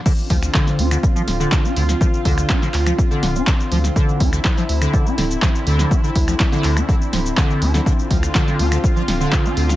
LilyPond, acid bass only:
\new Staff \with { instrumentName = "Acid bass" } { \clef bass \time 4/4 \key d \minor \tempo 4 = 123 d16 r16 f16 r16 d8 d'16 d16 r16 f16 r16 d8 d'16 d16 r16 | f16 r16 d8 d'16 d16 r16 f16 r16 d8 d'16 d16 r16 f16 r16 | d8 d'16 d16 r16 f16 r16 d8 d'16 d16 r16 f16 r16 d8 | d'16 d16 r16 f16 r16 d8 d'16 d16 r16 f16 r16 d8 d'16 d16 |
d16 r16 f16 r16 d8 d'16 d16 r16 f16 r16 d8 d'16 d16 r16 | }